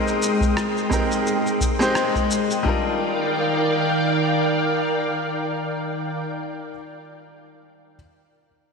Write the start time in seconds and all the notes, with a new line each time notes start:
Already playing: G#3 C4 D#4 G4 A#4 G5 C6 D#6
0.07 shaker
0.22 shaker
0.41 kick, shaker
0.57 cross-stick, shaker
0.77 shaker
0.89 G#3 C4 D#4 G4 A#4, kick, shaker
1.12 shaker
1.27 shaker
1.47 shaker
1.61 kick, shaker
1.79 G#3 C4 D#4 G4 C5, shaker
1.95 cross-stick, shaker
2.15 kick, shaker
2.31 shaker
2.51 shaker
2.63 D#3 G3 D4 D#4 A#4 D5 F5 G5, kick
2.67 F4 A#4